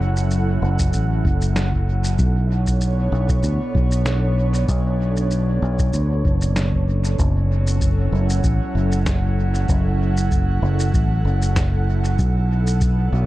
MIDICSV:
0, 0, Header, 1, 4, 480
1, 0, Start_track
1, 0, Tempo, 625000
1, 1679, Time_signature, 4, 2, 24, 8
1, 10185, End_track
2, 0, Start_track
2, 0, Title_t, "Analog synth pad"
2, 0, Program_c, 0, 89
2, 0, Note_on_c, 0, 54, 74
2, 0, Note_on_c, 0, 61, 67
2, 0, Note_on_c, 0, 64, 77
2, 0, Note_on_c, 0, 69, 75
2, 0, Note_on_c, 0, 78, 81
2, 1679, Note_off_c, 0, 54, 0
2, 1679, Note_on_c, 0, 47, 91
2, 1680, Note_off_c, 0, 61, 0
2, 1786, Note_on_c, 0, 59, 82
2, 1801, Note_on_c, 0, 73, 86
2, 1908, Note_on_c, 0, 62, 73
2, 3105, Note_off_c, 0, 64, 0
2, 3221, Note_off_c, 0, 78, 0
2, 5519, Note_off_c, 0, 47, 0
2, 5519, Note_off_c, 0, 62, 0
2, 5519, Note_off_c, 0, 69, 0
2, 5525, Note_on_c, 0, 54, 72
2, 5610, Note_on_c, 0, 61, 74
2, 5707, Note_on_c, 0, 69, 82
2, 5969, Note_on_c, 0, 64, 75
2, 6004, Note_on_c, 0, 78, 82
2, 6222, Note_off_c, 0, 59, 0
2, 6410, Note_off_c, 0, 73, 0
2, 9360, Note_off_c, 0, 61, 0
2, 9361, Note_on_c, 0, 47, 77
2, 9362, Note_off_c, 0, 54, 0
2, 9487, Note_on_c, 0, 59, 75
2, 9755, Note_on_c, 0, 62, 70
2, 10045, Note_on_c, 0, 73, 96
2, 10061, Note_off_c, 0, 78, 0
2, 10185, Note_off_c, 0, 47, 0
2, 10185, Note_off_c, 0, 59, 0
2, 10185, Note_off_c, 0, 62, 0
2, 10185, Note_off_c, 0, 64, 0
2, 10185, Note_off_c, 0, 69, 0
2, 10185, Note_off_c, 0, 73, 0
2, 10185, End_track
3, 0, Start_track
3, 0, Title_t, "Fingered electric bass"
3, 0, Program_c, 1, 33
3, 0, Note_on_c, 1, 30, 95
3, 458, Note_off_c, 1, 30, 0
3, 476, Note_on_c, 1, 30, 97
3, 691, Note_off_c, 1, 30, 0
3, 717, Note_on_c, 1, 33, 74
3, 932, Note_off_c, 1, 33, 0
3, 957, Note_on_c, 1, 30, 93
3, 1657, Note_off_c, 1, 30, 0
3, 1679, Note_on_c, 1, 35, 91
3, 2378, Note_off_c, 1, 35, 0
3, 2397, Note_on_c, 1, 35, 96
3, 2611, Note_off_c, 1, 35, 0
3, 2634, Note_on_c, 1, 38, 97
3, 2751, Note_off_c, 1, 38, 0
3, 2878, Note_on_c, 1, 35, 86
3, 3577, Note_off_c, 1, 35, 0
3, 3597, Note_on_c, 1, 35, 93
3, 4297, Note_off_c, 1, 35, 0
3, 4318, Note_on_c, 1, 35, 99
3, 4532, Note_off_c, 1, 35, 0
3, 4560, Note_on_c, 1, 38, 79
3, 4773, Note_off_c, 1, 38, 0
3, 4798, Note_on_c, 1, 30, 96
3, 5497, Note_off_c, 1, 30, 0
3, 5519, Note_on_c, 1, 30, 94
3, 6218, Note_off_c, 1, 30, 0
3, 6239, Note_on_c, 1, 30, 99
3, 6452, Note_off_c, 1, 30, 0
3, 6479, Note_on_c, 1, 33, 96
3, 6594, Note_off_c, 1, 33, 0
3, 6720, Note_on_c, 1, 30, 87
3, 7418, Note_off_c, 1, 30, 0
3, 7440, Note_on_c, 1, 30, 99
3, 8138, Note_off_c, 1, 30, 0
3, 8158, Note_on_c, 1, 30, 101
3, 8372, Note_off_c, 1, 30, 0
3, 8400, Note_on_c, 1, 33, 76
3, 8613, Note_off_c, 1, 33, 0
3, 8638, Note_on_c, 1, 30, 98
3, 9337, Note_off_c, 1, 30, 0
3, 9360, Note_on_c, 1, 35, 96
3, 10058, Note_off_c, 1, 35, 0
3, 10080, Note_on_c, 1, 35, 100
3, 10185, Note_off_c, 1, 35, 0
3, 10185, End_track
4, 0, Start_track
4, 0, Title_t, "Drums"
4, 126, Note_on_c, 9, 82, 46
4, 203, Note_off_c, 9, 82, 0
4, 236, Note_on_c, 9, 82, 35
4, 313, Note_off_c, 9, 82, 0
4, 605, Note_on_c, 9, 82, 49
4, 609, Note_on_c, 9, 36, 100
4, 682, Note_off_c, 9, 82, 0
4, 686, Note_off_c, 9, 36, 0
4, 715, Note_on_c, 9, 82, 39
4, 792, Note_off_c, 9, 82, 0
4, 958, Note_on_c, 9, 36, 99
4, 1035, Note_off_c, 9, 36, 0
4, 1087, Note_on_c, 9, 82, 47
4, 1164, Note_off_c, 9, 82, 0
4, 1198, Note_on_c, 9, 38, 82
4, 1198, Note_on_c, 9, 82, 35
4, 1275, Note_off_c, 9, 38, 0
4, 1275, Note_off_c, 9, 82, 0
4, 1329, Note_on_c, 9, 36, 56
4, 1405, Note_off_c, 9, 36, 0
4, 1567, Note_on_c, 9, 82, 47
4, 1644, Note_off_c, 9, 82, 0
4, 1677, Note_on_c, 9, 82, 38
4, 1679, Note_on_c, 9, 36, 112
4, 1754, Note_off_c, 9, 82, 0
4, 1755, Note_off_c, 9, 36, 0
4, 2048, Note_on_c, 9, 82, 49
4, 2049, Note_on_c, 9, 36, 56
4, 2125, Note_off_c, 9, 82, 0
4, 2126, Note_off_c, 9, 36, 0
4, 2157, Note_on_c, 9, 82, 38
4, 2234, Note_off_c, 9, 82, 0
4, 2527, Note_on_c, 9, 82, 50
4, 2528, Note_on_c, 9, 36, 96
4, 2603, Note_off_c, 9, 82, 0
4, 2605, Note_off_c, 9, 36, 0
4, 2635, Note_on_c, 9, 82, 40
4, 2712, Note_off_c, 9, 82, 0
4, 2878, Note_on_c, 9, 36, 97
4, 2955, Note_off_c, 9, 36, 0
4, 3006, Note_on_c, 9, 82, 51
4, 3083, Note_off_c, 9, 82, 0
4, 3116, Note_on_c, 9, 38, 78
4, 3116, Note_on_c, 9, 82, 37
4, 3193, Note_off_c, 9, 38, 0
4, 3193, Note_off_c, 9, 82, 0
4, 3487, Note_on_c, 9, 82, 47
4, 3564, Note_off_c, 9, 82, 0
4, 3598, Note_on_c, 9, 36, 113
4, 3598, Note_on_c, 9, 82, 41
4, 3675, Note_off_c, 9, 36, 0
4, 3675, Note_off_c, 9, 82, 0
4, 3967, Note_on_c, 9, 82, 51
4, 4044, Note_off_c, 9, 82, 0
4, 4077, Note_on_c, 9, 82, 38
4, 4153, Note_off_c, 9, 82, 0
4, 4445, Note_on_c, 9, 82, 51
4, 4449, Note_on_c, 9, 36, 98
4, 4522, Note_off_c, 9, 82, 0
4, 4526, Note_off_c, 9, 36, 0
4, 4556, Note_on_c, 9, 82, 43
4, 4633, Note_off_c, 9, 82, 0
4, 4799, Note_on_c, 9, 36, 99
4, 4875, Note_off_c, 9, 36, 0
4, 4926, Note_on_c, 9, 82, 53
4, 5003, Note_off_c, 9, 82, 0
4, 5038, Note_on_c, 9, 38, 81
4, 5038, Note_on_c, 9, 82, 39
4, 5115, Note_off_c, 9, 38, 0
4, 5115, Note_off_c, 9, 82, 0
4, 5169, Note_on_c, 9, 36, 56
4, 5246, Note_off_c, 9, 36, 0
4, 5410, Note_on_c, 9, 82, 52
4, 5487, Note_off_c, 9, 82, 0
4, 5519, Note_on_c, 9, 36, 108
4, 5521, Note_on_c, 9, 82, 42
4, 5596, Note_off_c, 9, 36, 0
4, 5597, Note_off_c, 9, 82, 0
4, 5891, Note_on_c, 9, 82, 53
4, 5968, Note_off_c, 9, 82, 0
4, 5999, Note_on_c, 9, 82, 41
4, 6000, Note_on_c, 9, 36, 98
4, 6076, Note_off_c, 9, 36, 0
4, 6076, Note_off_c, 9, 82, 0
4, 6372, Note_on_c, 9, 82, 54
4, 6449, Note_off_c, 9, 82, 0
4, 6479, Note_on_c, 9, 36, 104
4, 6480, Note_on_c, 9, 82, 44
4, 6556, Note_off_c, 9, 36, 0
4, 6557, Note_off_c, 9, 82, 0
4, 6849, Note_on_c, 9, 82, 55
4, 6926, Note_off_c, 9, 82, 0
4, 6960, Note_on_c, 9, 36, 105
4, 6960, Note_on_c, 9, 38, 86
4, 6960, Note_on_c, 9, 82, 41
4, 7036, Note_off_c, 9, 36, 0
4, 7037, Note_off_c, 9, 38, 0
4, 7037, Note_off_c, 9, 82, 0
4, 7331, Note_on_c, 9, 82, 53
4, 7408, Note_off_c, 9, 82, 0
4, 7439, Note_on_c, 9, 82, 43
4, 7440, Note_on_c, 9, 36, 112
4, 7516, Note_off_c, 9, 36, 0
4, 7516, Note_off_c, 9, 82, 0
4, 7810, Note_on_c, 9, 82, 52
4, 7887, Note_off_c, 9, 82, 0
4, 7920, Note_on_c, 9, 36, 103
4, 7921, Note_on_c, 9, 82, 41
4, 7997, Note_off_c, 9, 36, 0
4, 7998, Note_off_c, 9, 82, 0
4, 8290, Note_on_c, 9, 82, 57
4, 8367, Note_off_c, 9, 82, 0
4, 8401, Note_on_c, 9, 36, 107
4, 8402, Note_on_c, 9, 82, 45
4, 8477, Note_off_c, 9, 36, 0
4, 8479, Note_off_c, 9, 82, 0
4, 8771, Note_on_c, 9, 82, 54
4, 8848, Note_off_c, 9, 82, 0
4, 8880, Note_on_c, 9, 38, 87
4, 8880, Note_on_c, 9, 82, 42
4, 8881, Note_on_c, 9, 36, 106
4, 8957, Note_off_c, 9, 38, 0
4, 8957, Note_off_c, 9, 82, 0
4, 8958, Note_off_c, 9, 36, 0
4, 9250, Note_on_c, 9, 82, 54
4, 9327, Note_off_c, 9, 82, 0
4, 9359, Note_on_c, 9, 82, 41
4, 9361, Note_on_c, 9, 36, 117
4, 9436, Note_off_c, 9, 82, 0
4, 9438, Note_off_c, 9, 36, 0
4, 9730, Note_on_c, 9, 82, 54
4, 9807, Note_off_c, 9, 82, 0
4, 9838, Note_on_c, 9, 82, 39
4, 9841, Note_on_c, 9, 36, 107
4, 9915, Note_off_c, 9, 82, 0
4, 9917, Note_off_c, 9, 36, 0
4, 10185, End_track
0, 0, End_of_file